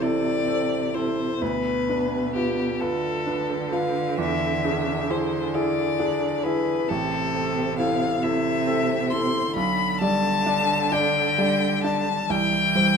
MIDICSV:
0, 0, Header, 1, 4, 480
1, 0, Start_track
1, 0, Key_signature, 0, "minor"
1, 0, Tempo, 936037
1, 723, Time_signature, 6, 3, 24, 8
1, 1204, Tempo, 916031
1, 2644, Tempo, 891530
1, 5044, Tempo, 913242
1, 6840, End_track
2, 0, Start_track
2, 0, Title_t, "Violin"
2, 0, Program_c, 0, 40
2, 8, Note_on_c, 0, 74, 58
2, 484, Note_on_c, 0, 72, 49
2, 492, Note_off_c, 0, 74, 0
2, 727, Note_on_c, 0, 71, 58
2, 735, Note_off_c, 0, 72, 0
2, 1204, Note_off_c, 0, 71, 0
2, 1207, Note_on_c, 0, 67, 47
2, 1443, Note_on_c, 0, 69, 52
2, 1450, Note_off_c, 0, 67, 0
2, 1928, Note_on_c, 0, 77, 52
2, 1936, Note_off_c, 0, 69, 0
2, 2167, Note_off_c, 0, 77, 0
2, 2172, Note_on_c, 0, 76, 59
2, 2650, Note_on_c, 0, 72, 47
2, 2658, Note_off_c, 0, 76, 0
2, 2888, Note_on_c, 0, 74, 54
2, 2896, Note_off_c, 0, 72, 0
2, 3364, Note_on_c, 0, 71, 55
2, 3372, Note_off_c, 0, 74, 0
2, 3609, Note_on_c, 0, 69, 63
2, 3617, Note_off_c, 0, 71, 0
2, 4086, Note_off_c, 0, 69, 0
2, 4093, Note_on_c, 0, 77, 56
2, 4330, Note_on_c, 0, 76, 61
2, 4338, Note_off_c, 0, 77, 0
2, 4805, Note_on_c, 0, 84, 63
2, 4814, Note_off_c, 0, 76, 0
2, 5043, Note_off_c, 0, 84, 0
2, 5046, Note_on_c, 0, 83, 65
2, 5277, Note_off_c, 0, 83, 0
2, 5283, Note_on_c, 0, 81, 74
2, 5763, Note_on_c, 0, 79, 72
2, 5771, Note_off_c, 0, 81, 0
2, 6242, Note_off_c, 0, 79, 0
2, 6245, Note_on_c, 0, 81, 60
2, 6490, Note_on_c, 0, 79, 76
2, 6498, Note_off_c, 0, 81, 0
2, 6840, Note_off_c, 0, 79, 0
2, 6840, End_track
3, 0, Start_track
3, 0, Title_t, "Grand piano"
3, 0, Program_c, 1, 0
3, 0, Control_c, 1, 64, 127
3, 0, Note_on_c, 1, 33, 41
3, 0, Note_on_c, 1, 60, 27
3, 0, Note_on_c, 1, 64, 24
3, 0, Note_on_c, 1, 69, 30
3, 8, Note_off_c, 1, 64, 0
3, 8, Note_on_c, 1, 64, 30
3, 10, Note_off_c, 1, 69, 0
3, 10, Note_on_c, 1, 69, 29
3, 225, Note_off_c, 1, 64, 0
3, 226, Note_off_c, 1, 69, 0
3, 244, Note_on_c, 1, 69, 32
3, 245, Note_off_c, 1, 60, 0
3, 245, Note_on_c, 1, 60, 30
3, 464, Note_off_c, 1, 60, 0
3, 464, Note_off_c, 1, 69, 0
3, 486, Note_on_c, 1, 64, 30
3, 488, Note_on_c, 1, 69, 31
3, 704, Note_off_c, 1, 64, 0
3, 705, Note_off_c, 1, 69, 0
3, 706, Note_off_c, 1, 33, 0
3, 726, Note_on_c, 1, 38, 37
3, 732, Control_c, 1, 64, 0
3, 814, Control_c, 1, 64, 127
3, 971, Note_on_c, 1, 62, 28
3, 971, Note_on_c, 1, 71, 28
3, 1186, Note_off_c, 1, 62, 0
3, 1187, Note_off_c, 1, 71, 0
3, 1209, Note_on_c, 1, 65, 25
3, 1210, Note_on_c, 1, 71, 31
3, 1426, Note_off_c, 1, 65, 0
3, 1427, Note_off_c, 1, 71, 0
3, 1447, Note_on_c, 1, 65, 30
3, 1448, Note_on_c, 1, 71, 31
3, 1662, Note_off_c, 1, 65, 0
3, 1663, Note_off_c, 1, 71, 0
3, 1685, Note_on_c, 1, 62, 31
3, 1688, Note_on_c, 1, 71, 34
3, 1901, Note_off_c, 1, 62, 0
3, 1903, Note_off_c, 1, 71, 0
3, 1924, Note_on_c, 1, 65, 31
3, 1926, Note_on_c, 1, 71, 32
3, 2144, Note_off_c, 1, 38, 0
3, 2144, Note_off_c, 1, 65, 0
3, 2145, Note_off_c, 1, 71, 0
3, 2163, Note_on_c, 1, 40, 44
3, 2172, Control_c, 1, 64, 0
3, 2247, Control_c, 1, 64, 127
3, 2407, Note_on_c, 1, 62, 28
3, 2409, Note_on_c, 1, 68, 33
3, 2623, Note_off_c, 1, 62, 0
3, 2624, Note_off_c, 1, 68, 0
3, 2643, Note_on_c, 1, 64, 29
3, 2645, Note_on_c, 1, 68, 33
3, 2863, Note_off_c, 1, 64, 0
3, 2865, Note_off_c, 1, 68, 0
3, 2887, Note_on_c, 1, 64, 32
3, 2888, Note_on_c, 1, 68, 38
3, 3107, Note_off_c, 1, 64, 0
3, 3107, Note_off_c, 1, 68, 0
3, 3129, Note_on_c, 1, 62, 34
3, 3130, Note_on_c, 1, 68, 36
3, 3348, Note_off_c, 1, 62, 0
3, 3349, Note_off_c, 1, 68, 0
3, 3372, Note_on_c, 1, 64, 35
3, 3375, Note_on_c, 1, 68, 34
3, 3588, Note_off_c, 1, 40, 0
3, 3589, Note_off_c, 1, 64, 0
3, 3591, Note_off_c, 1, 68, 0
3, 3617, Control_c, 1, 64, 0
3, 3617, Note_on_c, 1, 33, 45
3, 3711, Control_c, 1, 64, 127
3, 3856, Note_on_c, 1, 60, 31
3, 3858, Note_on_c, 1, 69, 34
3, 4069, Note_off_c, 1, 60, 0
3, 4070, Note_off_c, 1, 69, 0
3, 4095, Note_on_c, 1, 64, 34
3, 4096, Note_on_c, 1, 69, 32
3, 4307, Note_off_c, 1, 64, 0
3, 4308, Note_off_c, 1, 69, 0
3, 4333, Note_on_c, 1, 64, 33
3, 4333, Note_on_c, 1, 69, 37
3, 4546, Note_off_c, 1, 64, 0
3, 4547, Note_off_c, 1, 69, 0
3, 4567, Note_on_c, 1, 60, 37
3, 4570, Note_on_c, 1, 69, 38
3, 4784, Note_off_c, 1, 60, 0
3, 4785, Note_off_c, 1, 69, 0
3, 4809, Note_on_c, 1, 64, 33
3, 4811, Note_on_c, 1, 69, 39
3, 5025, Note_off_c, 1, 64, 0
3, 5026, Note_off_c, 1, 33, 0
3, 5026, Note_off_c, 1, 69, 0
3, 5048, Note_on_c, 1, 35, 48
3, 5053, Control_c, 1, 64, 0
3, 5134, Control_c, 1, 64, 127
3, 5286, Note_on_c, 1, 55, 32
3, 5288, Note_on_c, 1, 74, 37
3, 5501, Note_off_c, 1, 55, 0
3, 5502, Note_off_c, 1, 74, 0
3, 5521, Note_on_c, 1, 62, 36
3, 5523, Note_on_c, 1, 74, 37
3, 5741, Note_off_c, 1, 62, 0
3, 5742, Note_off_c, 1, 74, 0
3, 5760, Note_on_c, 1, 62, 34
3, 5765, Note_on_c, 1, 74, 40
3, 5983, Note_off_c, 1, 62, 0
3, 5986, Note_off_c, 1, 74, 0
3, 6006, Note_on_c, 1, 55, 35
3, 6008, Note_on_c, 1, 74, 36
3, 6227, Note_off_c, 1, 55, 0
3, 6228, Note_off_c, 1, 74, 0
3, 6246, Note_on_c, 1, 62, 32
3, 6247, Note_on_c, 1, 74, 37
3, 6464, Note_off_c, 1, 62, 0
3, 6465, Note_off_c, 1, 74, 0
3, 6467, Note_off_c, 1, 35, 0
3, 6486, Note_on_c, 1, 36, 45
3, 6494, Control_c, 1, 64, 0
3, 6583, Control_c, 1, 64, 127
3, 6726, Note_on_c, 1, 55, 31
3, 6729, Note_on_c, 1, 72, 34
3, 6840, Note_off_c, 1, 36, 0
3, 6840, Note_off_c, 1, 55, 0
3, 6840, Note_off_c, 1, 72, 0
3, 6840, End_track
4, 0, Start_track
4, 0, Title_t, "Cello"
4, 0, Program_c, 2, 42
4, 0, Note_on_c, 2, 48, 37
4, 703, Note_off_c, 2, 48, 0
4, 726, Note_on_c, 2, 47, 38
4, 1447, Note_on_c, 2, 50, 43
4, 1455, Note_off_c, 2, 47, 0
4, 3611, Note_off_c, 2, 50, 0
4, 3617, Note_on_c, 2, 48, 43
4, 4314, Note_off_c, 2, 48, 0
4, 4326, Note_on_c, 2, 48, 49
4, 5030, Note_off_c, 2, 48, 0
4, 5041, Note_on_c, 2, 50, 45
4, 6463, Note_off_c, 2, 50, 0
4, 6486, Note_on_c, 2, 52, 45
4, 6840, Note_off_c, 2, 52, 0
4, 6840, End_track
0, 0, End_of_file